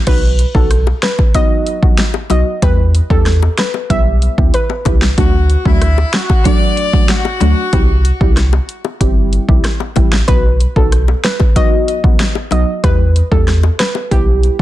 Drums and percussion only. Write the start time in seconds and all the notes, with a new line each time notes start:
0.07 kick, closed hi-hat, crash
0.39 closed hi-hat
0.55 kick
0.71 cross-stick, closed hi-hat
0.87 high bongo
1.02 finger snap, snare, closed hi-hat
1.18 kick, high bongo
1.34 kick, closed hi-hat
1.67 closed hi-hat
1.83 kick
1.97 finger snap, snare, closed hi-hat
2.14 high bongo
2.30 closed hi-hat, low bongo
2.62 kick, closed hi-hat
2.95 closed hi-hat
3.10 kick
3.26 cross-stick, snare, closed hi-hat
3.42 high bongo
3.58 finger snap, snare, closed hi-hat
3.74 high bongo
3.90 kick, closed hi-hat
4.22 closed hi-hat
4.38 kick
4.54 closed hi-hat
4.70 high bongo
4.85 kick, closed hi-hat, low bongo
5.01 finger snap, snare
5.18 kick, closed hi-hat
5.50 closed hi-hat
5.66 kick
5.82 cross-stick, closed hi-hat
5.98 high bongo
6.13 finger snap, snare, closed hi-hat
6.30 kick, high bongo
6.45 kick, closed hi-hat
6.77 closed hi-hat
6.93 kick
7.08 finger snap, snare, closed hi-hat
7.25 high bongo
7.40 closed hi-hat, low bongo
7.73 kick, closed hi-hat
8.05 closed hi-hat
8.21 kick
8.37 cross-stick, snare, closed hi-hat
8.53 high bongo
8.69 closed hi-hat
8.85 high bongo
9.01 kick, closed hi-hat
9.33 closed hi-hat
9.49 kick
9.64 cross-stick, snare, closed hi-hat
9.80 high bongo
9.96 kick, closed hi-hat, low bongo
10.12 finger snap, snare
10.28 kick, closed hi-hat
10.60 closed hi-hat
10.76 kick
10.92 cross-stick, closed hi-hat
11.08 high bongo
11.24 finger snap, snare, closed hi-hat
11.40 kick, high bongo
11.56 kick, closed hi-hat
11.88 closed hi-hat
12.04 kick
12.19 finger snap, snare, closed hi-hat
12.35 high bongo
12.51 closed hi-hat, low bongo
12.84 kick, closed hi-hat
13.16 closed hi-hat
13.32 kick
13.48 cross-stick, snare, closed hi-hat
13.63 high bongo
13.79 finger snap, snare, closed hi-hat
13.95 high bongo
14.11 kick, closed hi-hat
14.43 closed hi-hat